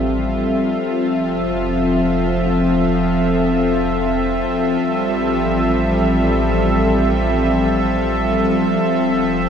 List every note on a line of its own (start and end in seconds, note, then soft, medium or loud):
0.00 0.78 A1 medium
0.00 9.49 F3 medium
0.00 0.83 G3 medium
0.00 9.49 C4 medium
0.00 9.49 F4 medium
0.00 9.49 A4 medium
0.00 9.49 E5 medium
0.83 4.78 F1 medium
0.83 4.83 F3 medium
4.83 8.78 A1 medium
4.83 8.84 G3 medium
8.83 9.49 F1 medium
8.83 9.49 F3 medium